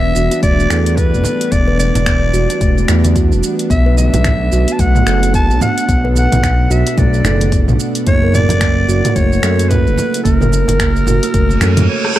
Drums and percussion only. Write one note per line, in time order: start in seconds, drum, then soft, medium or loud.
0.15 high bongo soft
0.15 shaker medium
0.31 closed hi-hat medium
0.31 high bongo medium
0.31 shaker soft
0.43 kick loud
0.43 closed hi-hat soft
0.43 shaker soft
0.60 shaker soft
0.70 finger snap medium
0.70 shaker medium
0.86 closed hi-hat soft
0.86 high bongo soft
0.86 shaker soft
0.97 kick loud
0.97 closed hi-hat soft
0.97 shaker soft
1.14 shaker soft
1.24 high conga medium
1.24 low conga medium
1.24 shaker medium
1.40 closed hi-hat medium
1.40 high bongo soft
1.40 shaker soft
1.52 kick loud
1.52 closed hi-hat soft
1.52 shaker soft
1.67 high bongo medium
1.67 high conga soft
1.79 high conga medium
1.79 shaker medium
1.95 closed hi-hat soft
1.95 low conga medium
1.95 shaker soft
2.06 finger snap medium
2.06 kick loud
2.06 closed hi-hat soft
2.06 shaker soft
2.34 high bongo soft
2.34 shaker medium
2.50 closed hi-hat medium
2.50 high bongo medium
2.50 shaker soft
2.61 kick loud
2.61 closed hi-hat soft
2.61 shaker soft
2.78 shaker soft
2.88 finger snap medium
2.88 low conga medium
2.88 shaker medium
3.04 closed hi-hat medium
3.04 high conga medium
3.04 shaker soft
3.16 kick loud
3.16 closed hi-hat soft
3.16 shaker soft
3.32 shaker soft
3.43 shaker medium
3.59 closed hi-hat medium
3.59 shaker soft
3.70 kick loud
3.70 closed hi-hat soft
3.70 shaker soft
3.86 high bongo medium
3.97 high conga medium
3.97 shaker medium
4.14 closed hi-hat medium
4.14 low conga medium
4.14 shaker soft
4.24 finger snap medium
4.24 kick loud
4.24 closed hi-hat soft
4.24 mid tom medium
4.24 shaker soft
4.52 high bongo soft
4.52 shaker medium
4.68 closed hi-hat medium
4.68 high bongo medium
4.68 shaker soft
4.79 kick loud
4.79 closed hi-hat soft
4.79 shaker soft
4.95 mid tom medium
4.95 shaker soft
5.07 finger snap medium
5.07 shaker medium
5.23 closed hi-hat soft
5.23 high bongo soft
5.23 shaker soft
5.34 kick medium
5.34 closed hi-hat soft
5.34 shaker soft
5.51 shaker soft
5.61 mid tom medium
5.61 high conga medium
5.61 low conga medium
5.61 shaker medium
5.77 closed hi-hat medium
5.77 high bongo soft
5.77 shaker soft
5.89 kick loud
5.89 closed hi-hat soft
5.89 shaker soft
6.05 high bongo medium
6.05 high conga soft
6.15 high conga medium
6.15 shaker medium
6.32 closed hi-hat medium
6.32 mid tom medium
6.32 low conga medium
6.32 shaker soft
6.43 finger snap medium
6.43 kick medium
6.43 closed hi-hat soft
6.43 shaker soft
6.71 high bongo soft
6.71 shaker medium
6.87 closed hi-hat medium
6.87 high bongo medium
6.87 shaker soft
6.98 kick loud
6.98 closed hi-hat soft
6.98 mid tom medium
6.98 shaker soft
7.14 shaker soft
7.24 finger snap medium
7.24 low conga medium
7.24 shaker medium
7.41 closed hi-hat medium
7.41 high conga medium
7.41 shaker soft
7.52 kick loud
7.52 closed hi-hat soft
7.52 shaker soft
7.68 mid tom medium
7.68 shaker soft
7.80 shaker medium
7.95 closed hi-hat medium
7.95 shaker soft
8.07 kick medium
8.07 closed hi-hat soft
8.07 shaker soft
8.22 high bongo medium
8.34 mid tom medium
8.34 high conga medium
8.34 shaker medium
8.49 closed hi-hat medium
8.49 low conga medium
8.49 shaker soft
8.61 finger snap medium
8.61 kick medium
8.61 closed hi-hat soft
8.61 shaker soft
8.88 high bongo medium
8.88 shaker medium
9.05 closed hi-hat medium
9.05 mid tom medium
9.05 high bongo medium
9.05 shaker soft
9.16 kick medium
9.16 closed hi-hat soft
9.16 shaker soft
9.33 shaker soft
9.43 finger snap medium
9.43 shaker medium
9.59 closed hi-hat medium
9.59 high bongo soft
9.59 shaker soft
9.71 kick medium
9.71 closed hi-hat soft
9.71 mid tom medium
9.71 shaker soft
9.87 shaker soft
9.98 high conga medium
9.98 low conga medium
9.98 shaker medium
10.13 closed hi-hat medium
10.13 high bongo soft
10.13 shaker soft
10.25 kick medium
10.25 closed hi-hat soft
10.25 shaker soft
10.41 mid tom medium
10.41 high bongo medium
10.41 high conga soft
10.41 shaker soft
10.52 high conga medium
10.52 shaker medium
10.68 closed hi-hat medium
10.68 low conga medium
10.68 shaker soft
10.79 finger snap medium
10.79 kick medium
10.79 closed hi-hat soft
10.79 shaker soft
10.96 shaker soft
11.06 mid tom medium
11.06 high bongo medium
11.06 shaker medium
11.23 closed hi-hat medium
11.23 high bongo medium
11.23 shaker soft
11.34 kick medium
11.34 closed hi-hat soft
11.34 shaker soft
11.49 high conga medium
11.49 shaker soft
11.61 finger snap medium
11.61 low conga medium
11.61 shaker medium
11.77 closed hi-hat medium
11.77 mid tom medium
11.77 high conga medium
11.77 shaker soft
12.05 cross-stick medium
12.16 cross-stick medium